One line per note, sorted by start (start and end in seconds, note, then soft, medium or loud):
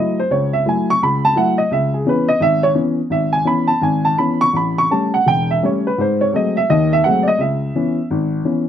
0.00 0.19 F#3 soft
0.00 0.19 A3 soft
0.00 0.19 E4 soft
0.00 0.18 D#5 medium
0.20 0.31 C5 medium
0.30 0.61 C#2 medium
0.30 0.53 C#5 medium
0.53 0.66 E5 medium
0.66 0.90 F#3 soft
0.66 0.90 A3 soft
0.66 0.90 E4 medium
0.66 0.89 G#5 medium
0.90 1.01 C#6 loud
1.02 1.31 C#2 medium
1.02 1.24 B5 medium
1.25 1.36 A5 loud
1.36 1.59 F#3 medium
1.36 1.59 A3 soft
1.36 1.59 E4 medium
1.36 1.58 F#5 medium
1.58 1.70 D#5 medium
1.71 2.00 C#2 medium
1.71 1.93 E5 medium
1.94 2.05 G#4 medium
2.05 2.28 E3 soft
2.05 2.29 B3 soft
2.05 2.29 C#4 medium
2.05 2.29 B4 medium
2.28 2.40 D#5 medium
2.40 2.70 G#1 medium
2.40 2.63 E5 loud
2.63 2.71 C#5 medium
2.74 2.99 E3 soft
2.74 2.99 B3 soft
2.74 2.99 C#4 medium
3.10 3.41 G#1 medium
3.10 3.33 E5 medium
3.33 3.45 G#5 medium
3.45 3.70 E3 medium
3.45 3.70 B3 soft
3.45 3.70 C#4 medium
3.45 3.69 B5 medium
3.67 3.81 A5 medium
3.82 4.13 G#1 medium
3.82 4.05 G#5 medium
4.05 4.18 A5 medium
4.18 4.44 E3 soft
4.18 4.44 B3 soft
4.18 4.44 C#4 soft
4.18 4.42 B5 medium
4.41 4.54 C#6 loud
4.53 4.86 A1 medium
4.53 4.79 B5 medium
4.78 4.91 C#6 medium
4.91 5.16 G3 soft
4.91 5.16 A3 soft
4.91 5.16 C#4 medium
4.91 5.14 A5 medium
5.14 5.27 F#5 medium
5.26 5.58 E1 medium
5.26 5.50 G5 loud
5.51 5.63 E5 medium
5.63 5.87 G3 medium
5.63 5.87 A3 soft
5.63 5.87 C#4 medium
5.63 5.87 C#5 medium
5.87 5.99 B4 medium
5.98 6.29 G#2 medium
5.98 6.22 C5 medium
6.21 6.33 C#5 medium
6.33 6.57 F#3 medium
6.33 6.57 G#3 soft
6.33 6.58 A3 soft
6.33 6.58 C4 medium
6.33 6.57 D#5 medium
6.57 6.69 E5 medium
6.69 6.99 D#2 medium
6.69 6.99 D#3 medium
6.69 6.91 D#5 medium
6.93 7.04 E5 loud
7.04 7.28 F#3 medium
7.04 7.28 G#3 soft
7.04 7.28 A3 soft
7.04 7.28 C4 medium
7.04 7.26 F#5 medium
7.23 7.25 D5 medium
7.28 7.39 D#5 medium
7.38 7.68 C#2 medium
7.38 8.05 E5 medium
7.75 7.98 E3 medium
7.75 7.98 B3 soft
7.75 7.98 C#4 medium
8.11 8.40 G#1 medium
8.44 8.68 E3 medium
8.44 8.68 B3 soft
8.44 8.68 C#4 medium